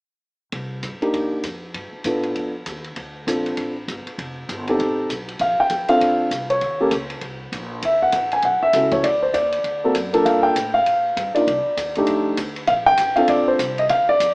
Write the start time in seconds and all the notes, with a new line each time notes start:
0.52 C2, kick, ride
0.83 G2, kick, hi-hat pedal, ride
1.00 A#3 D4 D#4 G4, muted upright bass stroke, ride
1.13 D#2, kick, ride
1.33 muted upright bass stroke
1.43 F2, kick, hi-hat pedal, ride
1.74 G2, kick, ride
1.93 muted upright bass stroke
2.04 A2 B3 D4 F4 A4, kick, hi-hat pedal, ride
2.23 ride
2.35 F2, kick, ride
2.66 D#2, kick, hi-hat pedal, ride
2.84 ride
2.96 D2, kick, ride
3.27 A#1 C4 D4 F4 A4, kick, hi-hat pedal, ride
3.46 ride
3.57 A1, kick, ride
3.88 G1, kick, hi-hat pedal, ride
4.07 muted upright bass stroke, ride
4.18 F1, kick, ride
4.49 G1, kick, hi-hat pedal, ride
4.67 C4 D#4 G4 A4, ride
4.79 A1, kick, ride
5.09 B1, kick, hi-hat pedal, ride
5.28 ride
5.39 A#1 F5, kick, ride
5.59 G5, muted upright bass stroke
5.70 F2, kick, hi-hat pedal, ride
5.88 C4 D4 F4 A4 F5, muted upright bass stroke, ride
6.01 D2, kick, ride
6.31 C2, kick, hi-hat pedal, ride
6.50 C#5, ride
6.61 D#2, kick, ride
6.80 A#3 C#4 G4 A4
6.91 C#2, kick, hi-hat pedal, ride
7.10 ride
7.21 C2, kick, ride
7.52 A#1, kick, hi-hat pedal, ride
7.82 D2 E5, kick, ride
8.02 F#5
8.12 A1, kick, hi-hat pedal, ride
8.31 G#5, ride
8.42 B1 F#5, kick, ride
8.62 E5, muted upright bass stroke
8.73 C#2 C#4 E4 F#4 A4, kick, hi-hat pedal, ride
8.91 C#5, kick, ride
9.03 D2 D5, kick, ride
9.22 C5
9.34 D#2 D5, kick, hi-hat pedal, ride
9.52 ride
9.64 D2, kick, ride
9.84 A#3 C4 F#4 A4
9.95 F#2, kick, hi-hat pedal, ride
10.13 A#3 D4 F4 A4, ride
10.25 G2 F5, kick, ride
10.43 G5
10.56 A2, kick, hi-hat pedal, ride
10.74 F5
10.86 A#2, kick, ride
11.17 G2, kick, hi-hat pedal, ride
11.35 A#3 D4 D#4 F4 D5, muted upright bass stroke, ride
11.47 C2, kick, ride
11.66 muted upright bass stroke
11.77 D#2, kick, hi-hat pedal, ride
11.95 A3 D4 D#4 G4, ride
12.07 F2, kick, ride
12.37 D2, kick, hi-hat pedal, ride
12.56 ride
12.67 A#1 F5, kick, ride
12.86 G5
12.97 A1, kick, hi-hat pedal, ride
13.16 C4 D4 F4 A4 F5, ride
13.28 A#1 D5, kick, ride
13.48 C5
13.59 C2, kick, hi-hat pedal, ride
13.78 D#5, ride
13.89 D2 F5, kick, ride
14.09 D5
14.20 F2, kick, hi-hat pedal, ride